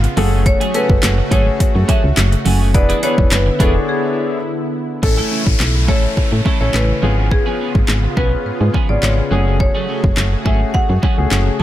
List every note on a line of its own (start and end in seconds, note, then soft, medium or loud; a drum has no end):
0.00 0.15 C#3 medium
0.00 0.15 B3 medium
0.00 0.15 F4 medium
0.00 0.13 F5 loud
0.00 muted clean electric guitar stroke soft
0.00 closed hi-hat medium
0.17 0.55 F#1 loud
0.17 2.72 C#3 medium
0.17 0.31 F#3 medium
0.17 0.64 A3 medium
0.17 2.72 A3 medium
0.17 0.32 A3 medium
0.17 0.64 C#4 medium
0.17 0.32 C#4 medium
0.17 2.72 F#4 medium
0.17 0.64 F#4 medium
0.17 0.64 G#4 medium
0.17 0.31 G#4 medium
0.17 0.64 A4 medium
0.17 open hi-hat medium
0.32 0.43 F#3 soft
0.32 0.43 A3 medium
0.32 0.43 C#4 medium
0.32 0.42 G#4 medium
0.46 0.75 C#5 loud
0.46 muted clean electric guitar stroke soft
0.46 kick loud
0.46 closed hi-hat medium
0.61 0.73 F#3 medium
0.61 0.73 A3 medium
0.61 0.74 C#4 medium
0.61 0.73 G#4 medium
0.61 closed hi-hat medium
0.74 0.85 F#3 medium
0.74 1.13 A3 medium
0.74 0.86 A3 medium
0.74 1.13 C#4 medium
0.74 0.86 C#4 medium
0.74 1.13 F#4 medium
0.74 1.13 G#4 medium
0.74 0.86 G#4 medium
0.74 1.13 A4 medium
0.74 1.28 B4 loud
0.74 closed hi-hat medium
0.89 0.98 F#1 loud
0.89 muted clean electric guitar stroke medium
0.89 kick medium
1.03 1.22 F#1 loud
1.03 snare medium
1.03 clap loud
1.03 closed hi-hat medium
1.18 muted clean electric guitar stroke medium
1.31 1.50 G#1 loud
1.31 1.46 F#3 medium
1.31 2.07 A3 medium
1.31 1.46 A3 medium
1.31 2.08 C#4 medium
1.31 1.46 C#4 medium
1.31 2.08 F#4 medium
1.31 2.08 G#4 medium
1.31 1.45 G#4 loud
1.31 2.08 A4 medium
1.31 1.85 C#5 loud
1.31 kick loud
1.31 closed hi-hat medium
1.46 muted clean electric guitar stroke medium
1.60 1.66 F#2 soft
1.60 kick medium
1.60 closed hi-hat medium
1.75 1.84 F#2 loud
1.75 muted clean electric guitar stroke soft
1.88 2.03 F#3 medium
1.88 2.03 A3 medium
1.88 2.03 C#4 medium
1.88 2.02 G#4 medium
1.88 2.71 E5 loud
1.88 kick loud
1.88 closed hi-hat medium
2.04 2.13 C#2 medium
2.04 muted clean electric guitar stroke soft
2.17 2.36 F#1 loud
2.17 muted clean electric guitar stroke soft
2.17 snare medium
2.17 clap loud
2.17 closed hi-hat medium
2.32 muted clean electric guitar stroke soft
2.32 closed hi-hat medium
2.45 2.76 F#1 medium
2.45 2.60 F#3 medium
2.45 2.60 A3 medium
2.45 2.60 C#4 medium
2.45 2.59 G#4 medium
2.45 open hi-hat medium
2.61 2.72 F#3 medium
2.61 2.71 A3 medium
2.61 2.71 C#4 medium
2.61 2.71 G#4 medium
2.74 2.93 E1 loud
2.74 5.01 D3 medium
2.74 2.94 B3 medium
2.74 5.01 B3 medium
2.74 2.94 D4 medium
2.74 2.94 E4 medium
2.74 5.01 E4 medium
2.74 2.94 G#4 medium
2.74 2.94 B4 loud
2.74 3.04 D5 loud
2.74 muted clean electric guitar stroke medium
2.74 kick loud
2.74 closed hi-hat medium
2.89 3.01 E3 medium
2.89 3.02 B3 medium
2.89 3.02 D4 medium
2.89 3.02 G#4 medium
2.89 closed hi-hat medium
3.02 3.14 E3 medium
3.02 3.41 B3 medium
3.02 3.14 B3 medium
3.02 3.41 D4 medium
3.02 3.14 D4 medium
3.02 3.41 E4 medium
3.02 3.41 G#4 medium
3.02 3.15 G#4 medium
3.02 3.41 B4 medium
3.02 3.33 C#5 loud
3.02 closed hi-hat medium
3.18 3.27 E1 loud
3.18 muted clean electric guitar stroke soft
3.18 kick medium
3.31 3.50 F#1 loud
3.31 3.58 B4 medium
3.31 snare medium
3.31 clap loud
3.31 closed hi-hat medium
3.46 muted clean electric guitar stroke medium
3.59 3.79 E1 medium
3.59 3.74 E3 medium
3.59 3.74 B3 medium
3.59 4.36 B3 medium
3.59 4.36 D4 medium
3.59 3.74 D4 medium
3.59 4.36 E4 medium
3.59 4.36 G#4 medium
3.59 3.73 G#4 medium
3.59 3.90 A4 medium
3.59 4.36 C#5 medium
3.59 kick medium
3.59 closed hi-hat medium
3.75 muted clean electric guitar stroke medium
3.89 4.71 G#4 medium
5.03 5.22 A1 loud
5.03 11.63 C#3 medium
5.03 7.01 E3 medium
5.03 5.59 A3 medium
5.03 7.01 A3 medium
5.03 5.59 C#4 medium
5.03 7.01 E4 medium
5.03 5.60 E4 medium
5.03 5.85 A4 medium
5.03 5.60 A4 medium
5.03 muted clean electric guitar stroke soft
5.03 kick loud
5.03 crash medium
5.03 downlifter medium
5.18 5.30 A3 medium
5.18 5.30 C#4 medium
5.18 5.31 E4 medium
5.18 5.31 A4 medium
5.31 5.42 A3 medium
5.31 5.43 C#4 medium
5.31 5.43 E4 medium
5.31 5.43 A4 medium
5.46 5.55 A1 loud
5.46 muted clean electric guitar stroke soft
5.46 kick medium
5.60 5.90 B1 medium
5.60 snare medium
5.60 clap loud
5.75 muted clean electric guitar stroke soft
5.88 6.07 A1 medium
5.88 6.03 A3 medium
5.88 6.36 A3 medium
5.88 6.36 C#4 medium
5.88 6.03 C#4 medium
5.88 6.36 E4 medium
5.88 6.03 E4 medium
5.88 6.36 A4 medium
5.88 6.02 A4 medium
5.88 6.60 C#5 medium
5.88 kick medium
6.03 muted clean electric guitar stroke soft
6.17 6.23 A2 soft
6.17 muted clean electric guitar stroke soft
6.17 kick medium
6.32 6.41 A2 medium
6.32 muted clean electric guitar stroke soft
6.45 6.60 A3 medium
6.45 6.60 C#4 medium
6.45 6.60 E4 medium
6.45 6.59 A4 loud
6.45 kick medium
6.60 6.70 A1 medium
6.60 7.03 A3 medium
6.60 6.71 A3 medium
6.60 7.01 C#4 medium
6.60 6.71 C#4 medium
6.60 6.71 E4 medium
6.60 7.03 E4 medium
6.60 6.70 A4 medium
6.60 7.03 A4 medium
6.60 6.75 C#5 medium
6.74 6.93 A1 medium
6.74 7.15 B4 medium
6.74 muted clean electric guitar stroke soft
6.74 snare medium
6.74 clap loud
6.89 muted clean electric guitar stroke soft
7.02 7.41 G#1 loud
7.02 7.17 F3 medium
7.02 7.95 B3 medium
7.02 7.17 B3 medium
7.02 9.29 B3 medium
7.02 7.95 C#4 medium
7.02 7.17 C#4 medium
7.02 7.95 F4 medium
7.02 9.29 F4 medium
7.02 7.95 G#4 medium
7.02 11.63 G#4 medium
7.02 7.16 G#4 medium
7.17 7.29 F3 soft
7.17 7.28 B3 soft
7.17 7.28 C#4 medium
7.17 7.28 G#4 medium
7.31 8.13 G#4 medium
7.31 muted clean electric guitar stroke soft
7.31 kick loud
7.46 7.58 F3 medium
7.46 7.59 B3 medium
7.46 7.59 C#4 medium
7.46 7.59 G#4 medium
7.60 7.71 F3 medium
7.60 7.71 B3 medium
7.60 7.72 C#4 medium
7.60 7.72 G#4 medium
7.75 7.84 G#1 loud
7.75 muted clean electric guitar stroke soft
7.75 kick medium
7.88 8.07 G#1 loud
7.88 snare medium
7.88 clap loud
8.03 muted clean electric guitar stroke soft
8.17 8.36 B1 medium
8.17 8.31 F3 medium
8.17 8.65 B3 medium
8.17 8.32 B3 medium
8.17 8.65 C#4 medium
8.17 8.31 C#4 medium
8.17 8.65 F4 medium
8.17 8.31 G#4 medium
8.17 8.92 B4 medium
8.17 8.65 B4 medium
8.17 kick medium
8.32 muted clean electric guitar stroke soft
8.46 8.52 G#2 soft
8.61 8.70 G#2 loud
8.61 muted clean electric guitar stroke soft
8.74 8.88 F3 medium
8.74 8.89 B3 medium
8.74 8.89 C#4 medium
8.74 8.88 G#4 medium
8.74 kick medium
8.89 8.98 G#1 medium
8.89 9.31 B3 medium
8.89 9.30 C#4 medium
8.89 9.32 F4 medium
8.89 9.30 G#4 medium
8.89 9.02 D5 medium
8.89 muted clean electric guitar stroke soft
9.02 9.22 G#1 medium
9.02 9.44 C#5 medium
9.02 muted clean electric guitar stroke soft
9.02 snare medium
9.02 clap loud
9.18 muted clean electric guitar stroke soft
9.31 9.69 F#1 loud
9.31 9.46 F#3 medium
9.31 10.23 A3 medium
9.31 9.46 A3 medium
9.31 11.63 A3 medium
9.31 10.23 C#4 medium
9.31 9.45 C#4 medium
9.31 10.23 F#4 medium
9.31 11.63 F#4 medium
9.31 10.23 G#4 medium
9.31 9.45 G#4 loud
9.46 9.57 F#3 medium
9.46 9.57 A3 medium
9.46 9.57 C#4 medium
9.46 9.56 G#4 medium
9.60 10.48 C#5 medium
9.60 muted clean electric guitar stroke soft
9.60 kick loud
9.75 9.87 F#3 medium
9.75 9.88 A3 medium
9.75 9.88 C#4 medium
9.75 9.88 G#4 medium
9.88 10.00 F#3 medium
9.88 10.00 A3 medium
9.88 10.00 C#4 medium
9.88 10.00 G#4 medium
10.04 10.13 F#1 loud
10.04 muted clean electric guitar stroke soft
10.04 kick medium
10.17 10.36 F#1 loud
10.17 snare medium
10.17 clap loud
10.32 muted clean electric guitar stroke soft
10.45 10.65 G#1 medium
10.45 10.60 F#3 medium
10.45 10.93 A3 medium
10.45 10.60 A3 medium
10.45 10.94 C#4 medium
10.45 10.60 C#4 medium
10.45 10.94 F#4 medium
10.45 10.94 G#4 medium
10.45 10.60 G#4 loud
10.45 10.72 E5 medium
10.45 kick medium
10.61 muted clean electric guitar stroke medium
10.74 10.81 F#2 soft
10.74 11.56 F#5 loud
10.74 kick medium
10.89 10.98 F#2 loud
10.89 muted clean electric guitar stroke soft
11.03 11.17 F#3 medium
11.03 11.18 A3 medium
11.03 11.17 C#4 loud
11.03 11.17 G#4 loud
11.03 kick medium
11.18 11.27 C#2 medium
11.18 11.63 A3 medium
11.18 11.63 C#4 medium
11.18 11.63 F#4 medium
11.18 11.63 G#4 medium
11.18 muted clean electric guitar stroke soft
11.31 11.50 F#1 medium
11.31 muted clean electric guitar stroke soft
11.31 snare medium
11.31 clap loud
11.46 muted clean electric guitar stroke soft
11.60 11.63 F#3 medium
11.60 11.63 A5 loud